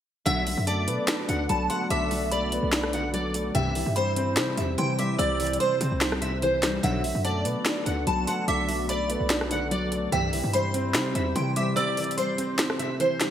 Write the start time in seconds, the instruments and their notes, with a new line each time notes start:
0.26 808-style bass B1, analog polysynth B2 D3 F#3, grand piano D3, analog synth pad B3 F#4 A4 D5, steel-string acoustic guitar E5, synth bell F#5, closed hi-hat
0.47 grand piano F#3, open hi-hat
0.57 808-style bass F#2
0.67 grand piano A3, steel-string acoustic guitar D5, synth bell A5, closed hi-hat
0.87 808-style bass B2, grand piano B3, closed hi-hat
1.08 grand piano D4, finger snap, snare, closed hi-hat
1.28 808-style bass D2, grand piano D3, steel-string acoustic guitar F#5, closed hi-hat
1.49 808-style bass B1, grand piano F#3, steel-string acoustic guitar A5, synth bell B5, closed hi-hat
1.70 grand piano A3, steel-string acoustic guitar F#5, synth bell C6, closed hi-hat
1.90 808-style bass B1, grand piano D3, steel-string acoustic guitar E5, synth bell D6, closed hi-hat
2.11 grand piano F#3, open hi-hat
2.31 grand piano A3, steel-string acoustic guitar D5, synth bell B5, closed hi-hat
2.52 grand piano B3, closed hi-hat
2.63 808-style bass B1
2.72 grand piano D4, finger snap, snare, closed hi-hat
2.84 cross-stick
2.93 grand piano D3, steel-string acoustic guitar F#5, closed hi-hat
3.13 grand piano F#3, steel-string acoustic guitar D5, closed hi-hat
3.34 grand piano A3, closed hi-hat
3.55 808-style bass C2, analog polysynth G2 C3 E3, analog synth pad C3 G3 E4 C5, grand piano C3, steel-string acoustic guitar E5, synth bell G5, closed hi-hat
3.75 grand piano E3, open hi-hat
3.86 808-style bass G2
3.96 grand piano G3, steel-string acoustic guitar C5, synth bell B5, closed hi-hat
4.16 grand piano C4, closed hi-hat
4.37 808-style bass C3, grand piano C5, finger snap, snare, closed hi-hat
4.57 808-style bass E2, grand piano C3, steel-string acoustic guitar E5, closed hi-hat
4.78 808-style bass C3, grand piano E3, steel-string acoustic guitar G5, synth bell C6, closed hi-hat
4.99 grand piano G3, steel-string acoustic guitar E5, synth bell D6, closed hi-hat
5.18 808-style bass C2, grand piano C3, steel-string acoustic guitar D5, synth bell E6, closed hi-hat
5.40 grand piano E3, closed hi-hat, open hi-hat
5.47 closed hi-hat
5.53 closed hi-hat
5.60 grand piano G3, steel-string acoustic guitar C5, synth bell C6, closed hi-hat
5.81 808-style bass C3, grand piano C4, closed hi-hat
5.92 808-style bass C2
6.01 grand piano C5, finger snap, snare, closed hi-hat
6.12 cross-stick
6.21 grand piano C3, steel-string acoustic guitar E5, closed hi-hat
6.42 grand piano E3, steel-string acoustic guitar C5, closed hi-hat
6.63 grand piano G3, finger snap, snare, closed hi-hat
6.83 808-style bass B1, analog polysynth B2 D3 F#3, grand piano D3, analog synth pad B3 F#4 A4 D5, steel-string acoustic guitar E5, synth bell F#5, closed hi-hat
7.04 grand piano F#3, open hi-hat
7.15 808-style bass F#2
7.24 grand piano A3, steel-string acoustic guitar D5, synth bell A5, closed hi-hat
7.45 808-style bass B2, grand piano B3, closed hi-hat
7.66 grand piano D4, finger snap, snare, closed hi-hat
7.86 808-style bass D2, grand piano D3, steel-string acoustic guitar F#5, closed hi-hat
8.07 808-style bass B1, grand piano F#3, steel-string acoustic guitar A5, synth bell B5, closed hi-hat
8.27 grand piano A3, steel-string acoustic guitar F#5, synth bell C6, closed hi-hat
8.48 808-style bass B1, grand piano D3, steel-string acoustic guitar E5, synth bell D6, closed hi-hat
8.69 grand piano F#3, open hi-hat
8.89 grand piano A3, steel-string acoustic guitar D5, synth bell B5, closed hi-hat
9.10 grand piano B3, closed hi-hat
9.20 808-style bass B1
9.30 grand piano D4, finger snap, snare, closed hi-hat
9.41 cross-stick
9.51 grand piano D3, steel-string acoustic guitar F#5, closed hi-hat
9.71 grand piano F#3, steel-string acoustic guitar D5, closed hi-hat
9.92 grand piano A3, closed hi-hat
10.12 808-style bass C2, analog polysynth G2 C3 E3, analog synth pad C3 G3 E4 C5, grand piano C3, steel-string acoustic guitar E5, synth bell G5, closed hi-hat
10.33 grand piano E3, open hi-hat
10.44 808-style bass G2
10.53 grand piano G3, steel-string acoustic guitar C5, synth bell B5, closed hi-hat
10.74 grand piano C4, closed hi-hat
10.94 808-style bass C3, grand piano C5, finger snap, snare, closed hi-hat
11.15 808-style bass E2, grand piano C3, steel-string acoustic guitar E5, closed hi-hat
11.35 808-style bass C3, grand piano E3, steel-string acoustic guitar G5, synth bell C6, closed hi-hat
11.56 grand piano G3, steel-string acoustic guitar E5, synth bell D6, closed hi-hat
11.76 grand piano C3, steel-string acoustic guitar D5, synth bell E6, closed hi-hat
11.97 grand piano E3, closed hi-hat, open hi-hat
12.04 closed hi-hat
12.11 closed hi-hat
12.17 grand piano G3, steel-string acoustic guitar C5, synth bell C6, closed hi-hat
12.38 grand piano C4, closed hi-hat
12.59 grand piano C5, finger snap, snare, closed hi-hat
12.70 cross-stick
12.79 grand piano C3, steel-string acoustic guitar E5, closed hi-hat
13.00 grand piano E3, steel-string acoustic guitar C5, closed hi-hat
13.21 grand piano G3, finger snap, snare, closed hi-hat